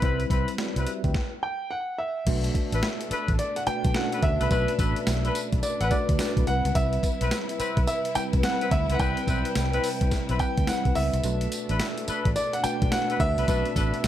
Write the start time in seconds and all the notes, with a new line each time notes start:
Already playing: G3 C4 E4 B4
0.02 C2 G3 C4 E4 B4, kick, closed hi-hat
0.20 closed hi-hat
0.30 C2 C4 E4 B4, kick, closed hi-hat
0.48 closed hi-hat
0.58 F#4 D5, snare, closed hi-hat
0.76 C2 C4 E4 B4, closed hi-hat
0.87 G4 E5, closed hi-hat
1.04 D2 B4 G5, kick, closed hi-hat
1.14 kick, snare
1.43 G5
1.71 F#5
1.98 E5
2.26 B1 B2 A3 D4 F#4 B4, kick, closed hi-hat, crash
2.44 closed hi-hat
2.55 kick, closed hi-hat
2.72 A1 D4 A4 B4, closed hi-hat
2.83 snare, closed hi-hat
3.01 closed hi-hat
3.10 D4 A4 B4, muted fingered electric bass stroke, closed hi-hat
3.28 A1, kick, closed hi-hat
3.39 D5, closed hi-hat
3.56 F#5, closed hi-hat
3.66 A3 D4 F#4 B4 G5, muted fingered electric bass stroke, closed hi-hat
3.85 B1, kick, closed hi-hat
3.94 A3 C#4 F#4 A4 F#5, snare, closed hi-hat
4.01 D4
4.12 D4 A4 B4, closed hi-hat
4.23 D2 E5, kick, closed hi-hat
4.40 C2 D4 A4 B4, closed hi-hat
4.50 B1 A3 D4 F#4 A4 B4, kick, closed hi-hat, tambourine
4.68 closed hi-hat
4.78 A1 D4 A4 B4, kick, closed hi-hat, tambourine
4.96 closed hi-hat
5.07 B1, snare, closed hi-hat, tambourine
5.24 D4 A4 B4, closed hi-hat
5.35 closed hi-hat, tambourine
5.53 B1, kick, closed hi-hat
5.63 D5, closed hi-hat, tambourine
5.80 A1 D4 A4 B4 F#5, closed hi-hat
5.91 A3 D4 F#4 B4 D5, kick, closed hi-hat, tambourine
6.09 D2, kick, closed hi-hat
6.19 A3 D4 F#4 B4, snare, closed hi-hat, tambourine
6.37 B1, kick, closed hi-hat
6.47 C2 C3 G3 C4 E4 B4 F#5, closed hi-hat
6.65 C#2, closed hi-hat
6.75 C2 E5, kick, closed hi-hat, tambourine
6.93 closed hi-hat
7.03 kick, closed hi-hat, tambourine
7.21 B1 C4 E4 B4, closed hi-hat
7.31 snare, closed hi-hat, tambourine
7.49 closed hi-hat
7.59 C4 E4 B4, muted fingered electric bass stroke, closed hi-hat, tambourine
7.77 B1, kick, closed hi-hat
7.87 E5, closed hi-hat, tambourine
8.05 closed hi-hat
8.15 G3 C4 E4 B4 G5, muted fingered electric bass stroke, closed hi-hat, tambourine
8.33 C2, kick, closed hi-hat
8.43 G3 C4 E4 B4 F#5, snare, closed hi-hat, tambourine
8.61 C4 E4 B4, closed hi-hat
8.71 D2 E5, kick, closed hi-hat
8.89 C#2 C4 E4 B4, closed hi-hat
8.94 F#5
8.99 C2 G3 C4 E4 B4 D5 G5, kick, closed hi-hat, tambourine
9.17 closed hi-hat
9.27 B1 C4 E4 B4, kick, closed hi-hat, tambourine
9.45 closed hi-hat
9.55 C2, snare, closed hi-hat, tambourine
9.73 C4 E4 B4, closed hi-hat
9.84 open hi-hat, tambourine
10.01 C2, kick, closed hi-hat
10.11 kick, snare, closed hi-hat, tambourine
10.29 B1 C4 E4 B4, closed hi-hat
10.39 G3 C4 E4 B4 G5, kick, closed hi-hat, tambourine
10.57 D2, kick, closed hi-hat
10.67 G3 C4 E4 B4 F#5, snare, closed hi-hat, tambourine
10.85 C2, kick, closed hi-hat
10.95 C#2 E5, open hi-hat
11.13 C2, closed hi-hat
11.23 B1 B2 A3 D4 F#4 B4, closed hi-hat, tambourine
11.41 closed hi-hat
11.52 closed hi-hat, tambourine
11.69 A1 D4 A4 B4, closed hi-hat
11.79 snare, closed hi-hat, tambourine
11.98 closed hi-hat
12.07 D4 A4 B4, muted fingered electric bass stroke, closed hi-hat, tambourine
12.25 A1, kick, closed hi-hat
12.36 D5, closed hi-hat, tambourine
12.53 F#5, closed hi-hat
12.64 A3 D4 F#4 B4 G5, muted fingered electric bass stroke, closed hi-hat, tambourine
12.82 B1, kick, closed hi-hat
12.92 A3 D4 F#4 B4 F#5, snare, closed hi-hat, tambourine
13.09 D4 A4 B4, closed hi-hat
13.20 D2 E5, kick, closed hi-hat
13.37 C2 D4 A4 B4, closed hi-hat
13.48 B1 A3 B3 C4 D4 F#4 A4 B4, kick, closed hi-hat, tambourine
13.55 D4
13.66 closed hi-hat
13.76 A1 D4 A4 B4, kick, closed hi-hat, tambourine
13.94 closed hi-hat
14.04 B1, snare, closed hi-hat, tambourine